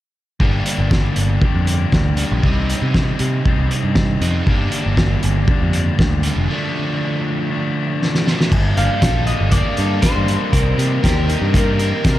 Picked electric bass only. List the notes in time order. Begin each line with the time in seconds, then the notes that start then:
0.40 G1
0.79 G1
1.17 G1
1.54 F2
1.92 D2
2.32 A#1
2.43 C2
2.82 C3
3.20 C3
3.59 C2
3.84 G2
4.21 F2
4.47 G1
4.86 G1
5.24 G1
5.62 F2
5.99 D2
6.36 F1
8.52 G1
8.77 G1
9.02 A#1
9.41 G1
9.78 G2
10.16 G2
10.53 C2
10.78 C3
11.04 D#2
11.42 G2
12.05 C3